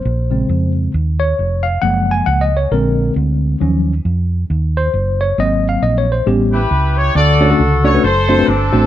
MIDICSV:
0, 0, Header, 1, 4, 480
1, 0, Start_track
1, 0, Tempo, 443787
1, 57, Time_signature, 4, 2, 24, 8
1, 9587, End_track
2, 0, Start_track
2, 0, Title_t, "Horn section"
2, 0, Program_c, 0, 61
2, 7054, Note_on_c, 0, 71, 86
2, 7062, Note_on_c, 0, 64, 63
2, 7062, Note_on_c, 0, 67, 65
2, 7501, Note_off_c, 0, 71, 0
2, 7531, Note_on_c, 0, 73, 98
2, 7700, Note_off_c, 0, 64, 0
2, 7701, Note_off_c, 0, 67, 0
2, 7735, Note_on_c, 0, 74, 108
2, 7739, Note_off_c, 0, 73, 0
2, 7739, Note_on_c, 0, 66, 81
2, 7740, Note_on_c, 0, 69, 79
2, 8183, Note_off_c, 0, 74, 0
2, 8481, Note_on_c, 0, 73, 96
2, 8653, Note_off_c, 0, 66, 0
2, 8654, Note_off_c, 0, 69, 0
2, 8677, Note_off_c, 0, 73, 0
2, 8691, Note_on_c, 0, 72, 101
2, 8701, Note_on_c, 0, 69, 79
2, 9150, Note_off_c, 0, 69, 0
2, 9163, Note_on_c, 0, 69, 97
2, 9173, Note_off_c, 0, 72, 0
2, 9173, Note_on_c, 0, 62, 66
2, 9178, Note_on_c, 0, 60, 71
2, 9587, Note_off_c, 0, 60, 0
2, 9587, Note_off_c, 0, 62, 0
2, 9587, Note_off_c, 0, 69, 0
2, 9587, End_track
3, 0, Start_track
3, 0, Title_t, "Tine electric piano"
3, 0, Program_c, 1, 4
3, 0, Note_on_c, 1, 72, 83
3, 330, Note_on_c, 1, 49, 53
3, 334, Note_on_c, 1, 56, 51
3, 341, Note_on_c, 1, 60, 55
3, 772, Note_off_c, 1, 72, 0
3, 984, Note_off_c, 1, 49, 0
3, 987, Note_off_c, 1, 56, 0
3, 990, Note_off_c, 1, 60, 0
3, 1294, Note_on_c, 1, 73, 97
3, 1763, Note_on_c, 1, 77, 99
3, 1789, Note_off_c, 1, 73, 0
3, 1960, Note_off_c, 1, 77, 0
3, 1964, Note_on_c, 1, 78, 102
3, 1966, Note_on_c, 1, 53, 53
3, 1976, Note_on_c, 1, 56, 53
3, 1980, Note_on_c, 1, 58, 59
3, 2286, Note_on_c, 1, 80, 96
3, 2303, Note_off_c, 1, 78, 0
3, 2446, Note_on_c, 1, 78, 100
3, 2459, Note_off_c, 1, 80, 0
3, 2609, Note_on_c, 1, 75, 94
3, 2620, Note_off_c, 1, 78, 0
3, 2691, Note_off_c, 1, 53, 0
3, 2696, Note_off_c, 1, 56, 0
3, 2698, Note_off_c, 1, 58, 0
3, 2776, Note_on_c, 1, 73, 86
3, 2781, Note_off_c, 1, 75, 0
3, 2940, Note_on_c, 1, 70, 77
3, 2944, Note_on_c, 1, 50, 57
3, 2945, Note_off_c, 1, 73, 0
3, 2949, Note_on_c, 1, 56, 53
3, 2955, Note_on_c, 1, 60, 61
3, 3388, Note_off_c, 1, 70, 0
3, 3862, Note_off_c, 1, 50, 0
3, 3864, Note_off_c, 1, 56, 0
3, 3867, Note_off_c, 1, 60, 0
3, 3896, Note_on_c, 1, 53, 61
3, 3904, Note_on_c, 1, 54, 52
3, 3910, Note_on_c, 1, 61, 67
3, 4239, Note_off_c, 1, 53, 0
3, 4243, Note_off_c, 1, 54, 0
3, 4246, Note_off_c, 1, 61, 0
3, 5161, Note_on_c, 1, 72, 108
3, 5633, Note_on_c, 1, 73, 98
3, 5644, Note_off_c, 1, 72, 0
3, 5824, Note_on_c, 1, 54, 56
3, 5828, Note_on_c, 1, 58, 55
3, 5837, Note_on_c, 1, 60, 62
3, 5838, Note_off_c, 1, 73, 0
3, 5840, Note_on_c, 1, 75, 109
3, 6130, Note_off_c, 1, 75, 0
3, 6153, Note_on_c, 1, 77, 95
3, 6298, Note_off_c, 1, 77, 0
3, 6303, Note_on_c, 1, 75, 91
3, 6452, Note_off_c, 1, 75, 0
3, 6469, Note_on_c, 1, 73, 94
3, 6540, Note_off_c, 1, 54, 0
3, 6542, Note_off_c, 1, 58, 0
3, 6547, Note_off_c, 1, 60, 0
3, 6620, Note_on_c, 1, 72, 88
3, 6631, Note_off_c, 1, 73, 0
3, 6774, Note_on_c, 1, 55, 59
3, 6777, Note_on_c, 1, 59, 53
3, 6782, Note_on_c, 1, 67, 81
3, 6784, Note_on_c, 1, 61, 64
3, 6786, Note_off_c, 1, 72, 0
3, 7116, Note_off_c, 1, 55, 0
3, 7118, Note_off_c, 1, 59, 0
3, 7122, Note_off_c, 1, 61, 0
3, 7228, Note_off_c, 1, 67, 0
3, 7741, Note_on_c, 1, 50, 69
3, 8009, Note_on_c, 1, 57, 75
3, 8011, Note_on_c, 1, 62, 71
3, 8015, Note_on_c, 1, 61, 67
3, 8018, Note_on_c, 1, 66, 69
3, 8020, Note_on_c, 1, 73, 82
3, 8069, Note_off_c, 1, 57, 0
3, 8070, Note_off_c, 1, 62, 0
3, 8072, Note_off_c, 1, 61, 0
3, 8073, Note_off_c, 1, 66, 0
3, 8075, Note_off_c, 1, 73, 0
3, 8114, Note_on_c, 1, 62, 70
3, 8114, Note_on_c, 1, 66, 67
3, 8114, Note_on_c, 1, 69, 81
3, 8115, Note_on_c, 1, 57, 72
3, 8117, Note_on_c, 1, 61, 69
3, 8234, Note_off_c, 1, 62, 0
3, 8234, Note_off_c, 1, 66, 0
3, 8234, Note_off_c, 1, 69, 0
3, 8235, Note_off_c, 1, 57, 0
3, 8236, Note_off_c, 1, 61, 0
3, 8449, Note_off_c, 1, 50, 0
3, 8482, Note_on_c, 1, 57, 71
3, 8482, Note_on_c, 1, 61, 65
3, 8485, Note_on_c, 1, 62, 69
3, 8487, Note_on_c, 1, 66, 64
3, 8488, Note_on_c, 1, 74, 81
3, 8545, Note_off_c, 1, 57, 0
3, 8545, Note_off_c, 1, 61, 0
3, 8546, Note_off_c, 1, 62, 0
3, 8547, Note_off_c, 1, 66, 0
3, 8548, Note_off_c, 1, 74, 0
3, 8589, Note_on_c, 1, 57, 68
3, 8589, Note_on_c, 1, 66, 62
3, 8590, Note_on_c, 1, 62, 59
3, 8591, Note_on_c, 1, 61, 63
3, 8591, Note_on_c, 1, 71, 76
3, 8695, Note_off_c, 1, 57, 0
3, 8695, Note_off_c, 1, 66, 0
3, 8696, Note_off_c, 1, 61, 0
3, 8696, Note_off_c, 1, 62, 0
3, 8696, Note_off_c, 1, 71, 0
3, 8961, Note_on_c, 1, 60, 74
3, 8962, Note_on_c, 1, 62, 77
3, 8966, Note_on_c, 1, 57, 80
3, 8966, Note_on_c, 1, 72, 86
3, 8968, Note_on_c, 1, 66, 75
3, 9024, Note_off_c, 1, 60, 0
3, 9024, Note_off_c, 1, 62, 0
3, 9026, Note_off_c, 1, 57, 0
3, 9026, Note_off_c, 1, 72, 0
3, 9027, Note_off_c, 1, 66, 0
3, 9065, Note_on_c, 1, 57, 72
3, 9068, Note_on_c, 1, 60, 62
3, 9070, Note_on_c, 1, 66, 61
3, 9070, Note_on_c, 1, 71, 76
3, 9071, Note_on_c, 1, 62, 62
3, 9188, Note_off_c, 1, 57, 0
3, 9189, Note_off_c, 1, 60, 0
3, 9190, Note_off_c, 1, 66, 0
3, 9190, Note_off_c, 1, 71, 0
3, 9191, Note_off_c, 1, 62, 0
3, 9437, Note_on_c, 1, 66, 69
3, 9438, Note_on_c, 1, 57, 72
3, 9438, Note_on_c, 1, 62, 70
3, 9441, Note_on_c, 1, 60, 71
3, 9442, Note_on_c, 1, 72, 85
3, 9557, Note_off_c, 1, 66, 0
3, 9558, Note_off_c, 1, 57, 0
3, 9558, Note_off_c, 1, 62, 0
3, 9559, Note_off_c, 1, 60, 0
3, 9560, Note_off_c, 1, 72, 0
3, 9587, End_track
4, 0, Start_track
4, 0, Title_t, "Fingered electric bass"
4, 0, Program_c, 2, 33
4, 58, Note_on_c, 2, 34, 101
4, 466, Note_off_c, 2, 34, 0
4, 532, Note_on_c, 2, 41, 84
4, 943, Note_off_c, 2, 41, 0
4, 1018, Note_on_c, 2, 39, 97
4, 1427, Note_off_c, 2, 39, 0
4, 1501, Note_on_c, 2, 29, 80
4, 1910, Note_off_c, 2, 29, 0
4, 1977, Note_on_c, 2, 30, 97
4, 2388, Note_off_c, 2, 30, 0
4, 2454, Note_on_c, 2, 37, 89
4, 2866, Note_off_c, 2, 37, 0
4, 2936, Note_on_c, 2, 34, 108
4, 3347, Note_off_c, 2, 34, 0
4, 3419, Note_on_c, 2, 38, 96
4, 3830, Note_off_c, 2, 38, 0
4, 3905, Note_on_c, 2, 39, 96
4, 4313, Note_off_c, 2, 39, 0
4, 4380, Note_on_c, 2, 41, 94
4, 4790, Note_off_c, 2, 41, 0
4, 4866, Note_on_c, 2, 39, 88
4, 5274, Note_off_c, 2, 39, 0
4, 5338, Note_on_c, 2, 30, 90
4, 5749, Note_off_c, 2, 30, 0
4, 5820, Note_on_c, 2, 32, 98
4, 6230, Note_off_c, 2, 32, 0
4, 6298, Note_on_c, 2, 34, 92
4, 6708, Note_off_c, 2, 34, 0
4, 6778, Note_on_c, 2, 33, 98
4, 7188, Note_off_c, 2, 33, 0
4, 7256, Note_on_c, 2, 37, 97
4, 7666, Note_off_c, 2, 37, 0
4, 7735, Note_on_c, 2, 38, 104
4, 8144, Note_off_c, 2, 38, 0
4, 8214, Note_on_c, 2, 37, 91
4, 8623, Note_off_c, 2, 37, 0
4, 8691, Note_on_c, 2, 30, 106
4, 9100, Note_off_c, 2, 30, 0
4, 9170, Note_on_c, 2, 31, 91
4, 9405, Note_off_c, 2, 31, 0
4, 9443, Note_on_c, 2, 33, 102
4, 9587, Note_off_c, 2, 33, 0
4, 9587, End_track
0, 0, End_of_file